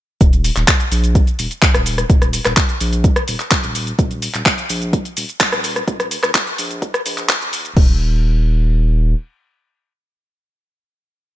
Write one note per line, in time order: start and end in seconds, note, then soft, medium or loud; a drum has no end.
0.21 0.50 D#1 loud
0.21 kick loud
0.21 closed hi-hat medium
0.21 shaker soft
0.33 closed hi-hat soft
0.33 shaker soft
0.44 open hi-hat loud
0.44 shaker medium
0.56 0.64 D#1 medium
0.56 clap soft
0.56 closed hi-hat soft
0.56 shaker soft
0.68 kick loud
0.68 clap loud
0.68 closed hi-hat medium
0.68 shaker soft
0.80 closed hi-hat soft
0.80 shaker soft
0.91 1.21 A#1 medium
0.91 open hi-hat loud
0.91 shaker medium
1.04 closed hi-hat soft
1.04 shaker soft
1.15 kick loud
1.15 closed hi-hat medium
1.15 shaker soft
1.27 closed hi-hat soft
1.27 shaker soft
1.39 1.47 D#1 medium
1.39 open hi-hat loud
1.39 shaker medium
1.51 closed hi-hat soft
1.51 shaker soft
1.62 kick loud
1.62 clap loud
1.62 closed hi-hat medium
1.62 shaker soft
1.74 2.04 D#1 medium
1.74 cross-stick medium
1.74 closed hi-hat soft
1.74 shaker soft
1.86 open hi-hat loud
1.86 shaker medium
1.98 cross-stick medium
1.98 closed hi-hat soft
1.98 shaker soft
2.10 2.39 D#1 loud
2.10 kick loud
2.10 closed hi-hat medium
2.10 shaker soft
2.22 cross-stick medium
2.22 closed hi-hat soft
2.22 shaker soft
2.33 open hi-hat loud
2.33 shaker medium
2.45 2.53 D#1 medium
2.45 cross-stick medium
2.45 clap soft
2.45 closed hi-hat soft
2.45 shaker soft
2.57 kick loud
2.57 clap loud
2.57 closed hi-hat medium
2.57 shaker soft
2.69 closed hi-hat soft
2.69 shaker soft
2.81 3.10 A#1 medium
2.81 open hi-hat loud
2.81 shaker medium
2.93 closed hi-hat soft
2.93 shaker soft
3.04 kick loud
3.04 closed hi-hat medium
3.04 shaker soft
3.16 cross-stick medium
3.16 closed hi-hat soft
3.16 shaker soft
3.28 3.36 D#1 medium
3.28 open hi-hat loud
3.28 shaker medium
3.40 clap soft
3.40 closed hi-hat soft
3.40 shaker soft
3.51 kick loud
3.51 clap loud
3.51 closed hi-hat medium
3.51 shaker soft
3.64 3.93 D#1 medium
3.64 closed hi-hat soft
3.64 shaker soft
3.75 open hi-hat loud
3.75 shaker medium
3.87 closed hi-hat soft
3.87 shaker soft
3.99 4.28 D#1 loud
3.99 kick loud
3.99 closed hi-hat medium
3.99 shaker soft
4.11 closed hi-hat soft
4.11 shaker soft
4.22 open hi-hat loud
4.22 shaker medium
4.34 4.42 D#1 medium
4.34 clap soft
4.34 closed hi-hat soft
4.34 shaker soft
4.46 kick loud
4.46 clap loud
4.46 closed hi-hat medium
4.46 shaker soft
4.58 closed hi-hat soft
4.58 shaker soft
4.70 4.99 A#1 medium
4.70 open hi-hat loud
4.70 shaker medium
4.82 closed hi-hat soft
4.82 shaker soft
4.93 kick loud
4.93 closed hi-hat medium
4.93 shaker soft
5.05 closed hi-hat soft
5.05 shaker soft
5.17 5.25 D#1 medium
5.17 open hi-hat loud
5.17 shaker medium
5.29 closed hi-hat soft
5.29 shaker soft
5.40 kick loud
5.40 clap loud
5.40 closed hi-hat medium
5.40 shaker soft
5.52 5.82 D#1 medium
5.52 cross-stick medium
5.52 closed hi-hat soft
5.52 shaker soft
5.64 open hi-hat loud
5.64 shaker medium
5.76 cross-stick medium
5.76 closed hi-hat soft
5.76 shaker soft
5.88 6.17 D#1 loud
5.88 kick loud
5.88 closed hi-hat medium
5.88 shaker soft
6.00 cross-stick medium
6.00 closed hi-hat soft
6.00 shaker soft
6.11 open hi-hat loud
6.11 shaker medium
6.23 6.31 D#1 medium
6.23 cross-stick medium
6.23 clap soft
6.23 closed hi-hat soft
6.23 shaker soft
6.35 kick loud
6.35 clap loud
6.35 closed hi-hat medium
6.35 shaker soft
6.47 closed hi-hat soft
6.47 shaker soft
6.58 6.88 A#1 medium
6.58 open hi-hat loud
6.58 shaker medium
6.71 closed hi-hat soft
6.71 shaker soft
6.82 kick loud
6.82 closed hi-hat medium
6.82 shaker soft
6.94 cross-stick medium
6.94 closed hi-hat soft
6.94 shaker soft
7.06 7.35 A#1 medium
7.06 open hi-hat loud
7.06 shaker medium
7.18 clap soft
7.18 closed hi-hat soft
7.18 shaker soft
7.29 kick loud
7.29 clap loud
7.29 closed hi-hat medium
7.29 shaker soft
7.41 7.70 D#1 medium
7.41 closed hi-hat soft
7.41 shaker soft
7.53 open hi-hat loud
7.53 shaker medium
7.65 closed hi-hat soft
7.65 shaker soft
7.77 9.14 D#1 loud
7.77 kick loud
7.77 crash medium